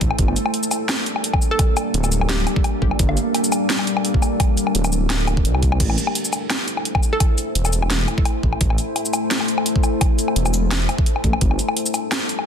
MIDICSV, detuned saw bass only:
0, 0, Header, 1, 2, 480
1, 0, Start_track
1, 0, Tempo, 350877
1, 257, Time_signature, 4, 2, 24, 8
1, 17045, End_track
2, 0, Start_track
2, 0, Title_t, "Detuned saw bass"
2, 0, Program_c, 0, 39
2, 17, Note_on_c, 0, 33, 97
2, 137, Note_off_c, 0, 33, 0
2, 258, Note_on_c, 0, 31, 100
2, 480, Note_off_c, 0, 31, 0
2, 2656, Note_on_c, 0, 26, 84
2, 3362, Note_off_c, 0, 26, 0
2, 3856, Note_on_c, 0, 31, 93
2, 3976, Note_off_c, 0, 31, 0
2, 4098, Note_on_c, 0, 31, 101
2, 4320, Note_off_c, 0, 31, 0
2, 6500, Note_on_c, 0, 26, 87
2, 7458, Note_on_c, 0, 36, 106
2, 7478, Note_off_c, 0, 26, 0
2, 7923, Note_off_c, 0, 36, 0
2, 7938, Note_on_c, 0, 33, 100
2, 8160, Note_off_c, 0, 33, 0
2, 10334, Note_on_c, 0, 28, 80
2, 11041, Note_off_c, 0, 28, 0
2, 11538, Note_on_c, 0, 33, 101
2, 11657, Note_off_c, 0, 33, 0
2, 11778, Note_on_c, 0, 33, 100
2, 12000, Note_off_c, 0, 33, 0
2, 14173, Note_on_c, 0, 28, 81
2, 14881, Note_off_c, 0, 28, 0
2, 15375, Note_on_c, 0, 33, 102
2, 15496, Note_off_c, 0, 33, 0
2, 15617, Note_on_c, 0, 31, 103
2, 15839, Note_off_c, 0, 31, 0
2, 17045, End_track
0, 0, End_of_file